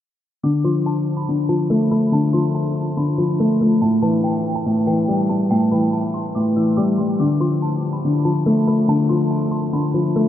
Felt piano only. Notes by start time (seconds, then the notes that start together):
0.43 D3
0.64 F3
1.29 D3
1.49 F3
1.70 A3
1.91 A3
2.12 D3
2.34 F3
2.97 D3
3.18 F3
3.40 A3
3.61 A3
3.82 A2
4.02 E3
4.66 A2
4.87 E3
5.08 G3
5.29 G3
5.51 A2
5.72 E3
6.36 A2
6.57 E3
6.77 G3
6.99 G3
7.20 D3
7.40 F3
8.05 D3
8.25 F3
8.46 A3
8.67 A3
8.88 D3
9.10 F3
9.73 D3
9.94 F3
10.16 A3